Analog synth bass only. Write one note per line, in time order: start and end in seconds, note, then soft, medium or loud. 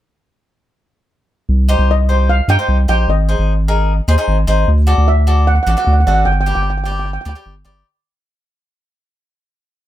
1.49 1.76 C2 medium
1.79 2.41 C2 medium
2.48 2.57 G2 medium
2.68 2.86 C2 medium
2.88 3.06 A#1 medium
3.08 3.35 G#1 medium
3.39 4.01 G#1 medium
4.08 4.17 D#2 medium
4.28 4.46 G#1 medium
4.48 4.65 G#1 medium
4.68 4.94 D2 medium
4.98 5.60 D2 medium
5.67 5.76 A1 medium
5.87 6.04 D2 medium
6.07 6.24 G#1 medium
6.26 6.53 G1 medium
6.56 7.18 G1 medium
7.26 7.35 D2 medium
7.46 7.64 G1 medium
7.65 7.83 G1 medium